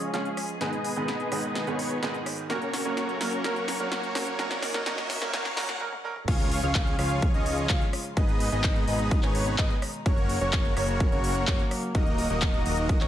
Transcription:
Already playing: F3 G#3 C#4 F4 G#4 C#5 D#5, riser
0.02 closed hi-hat
0.13 F3 G#3 C#4 F4 G#4 C#5 F5, snare, closed hi-hat
0.25 closed hi-hat
0.37 cross-stick, open hi-hat
0.49 closed hi-hat
0.60 G#2 D#3 G#3 B3 D#4 G#4 B4 D#5, snare, closed hi-hat
0.73 closed hi-hat
0.85 open hi-hat
0.96 G#2 D#3 G#3 B3 D#4 G#4 B4 D#5, closed hi-hat
1.08 snare, closed hi-hat
1.20 closed hi-hat
1.31 G#2 D#3 G#3 B3 D#4 G#4 B4 D#5, cross-stick, open hi-hat
1.44 closed hi-hat
1.55 snare, closed hi-hat
1.67 G#2 D#3 G#3 B3 D#4 G#4 B4 C#5, closed hi-hat
1.79 open hi-hat
1.91 closed hi-hat
2.02 G#2 D#3 G#3 B3 D#4 G#4 B4 D#5, snare, closed hi-hat
2.14 closed hi-hat
2.26 cross-stick, open hi-hat
2.38 closed hi-hat
2.49 F#3 A#3 C#4 F#4 A#4 C#5, snare, closed hi-hat
2.62 closed hi-hat
2.73 snare, open hi-hat
2.85 F#3 A#3 C#4 F#4 A#4 C#5, closed hi-hat
2.97 snare, closed hi-hat
3.09 closed hi-hat
3.20 F#3 A#3 C#4 F#4 A#4 C#5, snare, open hi-hat
3.33 closed hi-hat
3.44 F#3 A#3 C#4 F#4 A#4 C#5, snare, closed hi-hat
3.56 closed hi-hat
3.68 snare, open hi-hat
3.79 F#3 A#3 C#4 F#4 A#4 C#5
3.92 snare, closed hi-hat
4.03 closed hi-hat
4.15 F#3 A#3 C#4 F#4 A#4 C#5, snare, open hi-hat
4.27 closed hi-hat
4.38 F#3 A#3 C#4 D#4 F#4 A#4 C#5, snare, closed hi-hat
4.51 snare, closed hi-hat
4.63 snare, open hi-hat
4.74 F#3 A#3 C#4 F#4 A#4 C#5, snare, closed hi-hat
4.86 F#3 A#3 C#4 F#4 A#4 C#5, snare, closed hi-hat
4.98 snare, closed hi-hat
5.10 snare, open hi-hat
5.21 F#3 A#3 C#4 F#4 A#4 C#5, snare
5.33 F#3 A#3 C#4 F#4 A#4 C#5, snare, closed hi-hat
5.45 snare, closed hi-hat
5.56 F#3 A#3 C#4 F#4 A#4 C#5, snare, open hi-hat
5.69 snare, closed hi-hat
5.80 F#3 A#3 C#4 A#4, high tom
5.92 high tom
6.04 F#3 A#3 C#4 A#4
6.16 mid tom
6.28 C#2 C#3 F3 G#3 C#4 F4 G#4 C#5 F5, kick, closed hi-hat, crash, impact
6.40 closed hi-hat
6.51 open hi-hat
6.63 C#2 C#4 F4 G#4 C#5 F5, closed hi-hat
6.75 kick, clap, closed hi-hat
6.87 closed hi-hat
6.99 C#2 C#4 F4 G#4 C#5 F5, cross-stick, open hi-hat
7.10 closed hi-hat
7.22 kick, closed hi-hat
7.34 C#2 C#4 F4 G#4 C#5 D#5, closed hi-hat
7.46 open hi-hat
7.58 closed hi-hat
7.69 C#2 C#4 F4 G#4 C#5 F5, kick, clap, closed hi-hat
7.81 closed hi-hat
7.93 cross-stick, open hi-hat
8.05 closed hi-hat
8.17 G#1 B2 D#3 G#3 B3 D#4 G#4 B4 D#5, kick, closed hi-hat
8.29 closed hi-hat
8.40 open hi-hat
8.52 G#1 B3 D#4 G#4 B4 D#5, closed hi-hat
8.64 kick, clap, closed hi-hat
8.76 closed hi-hat
8.88 G#1 B3 D#4 G#4 B4 D#5, open hi-hat
8.99 closed hi-hat
9.11 kick, closed hi-hat
9.23 G#1 B3 D#4 G#4 B4 C#5, clap, closed hi-hat
9.35 open hi-hat
9.47 closed hi-hat
9.58 B3 D#4 G#4 B4 D#5, kick, clap, closed hi-hat
9.70 closed hi-hat
9.82 cross-stick, open hi-hat
9.94 closed hi-hat
10.06 F#1 C#3 F#3 A#3 C#4 F#4 A#4 C#5, kick, closed hi-hat
10.18 closed hi-hat
10.29 open hi-hat
10.41 F#1 A#3 C#4 F#4 A#4 C#5, closed hi-hat
10.53 kick, clap, closed hi-hat
10.65 closed hi-hat
10.77 F#1 A#3 C#4 F#4 A#4 C#5, cross-stick, open hi-hat
10.89 closed hi-hat
11.00 kick, closed hi-hat
11.12 F#1 A#3 C#4 F#4 A#4 C#5, closed hi-hat
11.24 open hi-hat
11.36 closed hi-hat
11.47 A#3 C#4 F#4 A#4 C#5, kick, clap, closed hi-hat
11.59 closed hi-hat
11.71 cross-stick, open hi-hat
11.83 closed hi-hat
11.95 D#1 D#3 A#3 D#4 F#4 A#4 D#5, kick, closed hi-hat
12.07 closed hi-hat
12.18 open hi-hat
12.30 D#1 A#3 D#4 F#4 A#4 D#5, closed hi-hat
12.42 kick, clap, closed hi-hat
12.54 closed hi-hat
12.66 D#1 A#3 D#4 F#4 A#4 D#5, open hi-hat
12.77 closed hi-hat
12.89 kick, closed hi-hat
13.01 D#1 A#3 D#4 F#4 A#4 C#5, clap, closed hi-hat

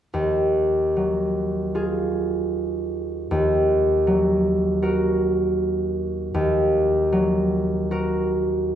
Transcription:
0.14 D#2
0.96 F#3
1.75 F4 G#4
3.31 D#2
4.07 F#3
4.82 F#4 A#4
6.34 D#2
7.12 F#3
7.91 F#4 A#4

